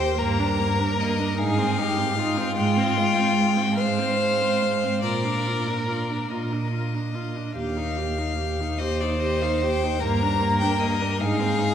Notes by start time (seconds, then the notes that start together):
Already playing: C5 G5
0.00 G4
0.18 G2 A#3 A#4 A#5
0.39 D4
0.60 A#3
0.80 D4
1.00 A#3 D#5
1.19 D4
1.38 G#2 D#4 G#4 F5
1.58 C4
1.78 D#4 G4
1.97 C4
2.18 D#4 F4
2.37 C4
2.57 G#2 G#3 G5
2.77 C4
2.97 G#3
3.15 C4
3.36 G#3
3.57 C4
3.77 G#2 G#3 C5 F5
3.99 C4
4.20 G#3
4.41 C4
4.62 G#3
4.84 C4
5.02 A#2 F4 A#4 D5
5.25 D4
5.47 F4
5.67 D4
5.88 F4 D5
6.10 D4
6.30 A#2 F4 D#5
6.52 D4
6.73 F4
6.94 D4
7.15 F4
7.36 D4
7.56 D#2 G4 F5
7.77 D#4
7.97 G4
8.18 D#4
8.39 G4
8.60 D#4
8.78 D#2 G4 C5 D#5
9.00 D#4 D5
9.20 G4 D#5
9.41 D#4 F5
9.61 G4 G5
9.83 D#4
10.00 G2 A#3 A#4 A#5
10.22 D4
10.41 A#3
10.61 D4 G5
10.80 A#3 D#5
11.01 D4
11.19 G#2 D#4 G#4 F5
11.39 C4
11.58 D#4